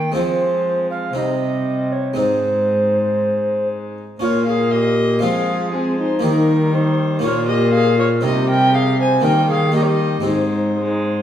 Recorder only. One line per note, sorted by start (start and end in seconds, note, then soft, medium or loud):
0.00 0.14 G5 loud
0.16 0.90 C5 medium
0.90 1.15 F5 medium
1.16 1.94 D#5 medium
1.92 2.17 C#5 medium
2.17 3.68 C5 medium
4.22 4.46 F4 medium
4.48 4.72 G#4 medium
4.73 5.24 G4 medium
5.22 5.75 G#4 medium
5.74 5.98 C4 medium
5.98 6.23 D#4 medium
6.24 6.73 D#4 medium
6.73 7.22 D#4 medium
7.24 7.50 F4 medium
7.49 7.73 G4 medium
7.73 7.98 G#4 medium
7.99 8.25 F4 medium
8.24 8.47 G4 medium
8.48 8.73 A#4 medium
8.73 8.98 G#4 medium
8.99 9.26 C5 medium
9.24 9.48 A#4 medium
9.49 9.74 G#4 medium
9.75 10.24 G4 medium
10.26 11.22 D#4 medium